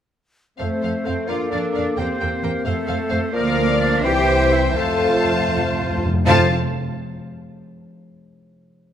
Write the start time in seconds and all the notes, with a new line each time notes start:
0.58 F2 A3 C4 A4 C5 F5
0.82 F2 A4 C5 F5
1.05 F2 C4 A4 C5 F5
1.28 F2 A#3 D4 F4 A4 A#4 D5 F5
1.51 F2 D4 A#4 D5 F5
1.72 F2 D4 A#4 D5 F5
1.96 E2 C4 G4 A#4 C5 G5
2.20 E2 A#4 C5 G5
2.43 E2 A#3 A#4 C5 G5
2.65 F2 A3 A4 C5 F5
2.87 F2 A4 C5 F5
3.09 F2 A4 C5 F5
3.33 D2 F3 A#3 A#4 D5 F5
3.79 D4 D5
4.03 C2 E3 C4 G4 C5 E5 G5
4.52 E4 E5
4.75 F2 A3 C4 F4 A4 C5 F5 A5
4.84 F2
4.92 F2
5.00 F2
5.08 F2
5.16 F2
5.24 F2
5.32 F2
5.40 F2
5.48 F2
5.57 F2
5.65 F2
5.73 F2
5.81 F2
5.89 F2
5.98 F2
6.06 F2
6.14 F2
6.26 F2 F3 A3 C4 F4 C5 F5 A5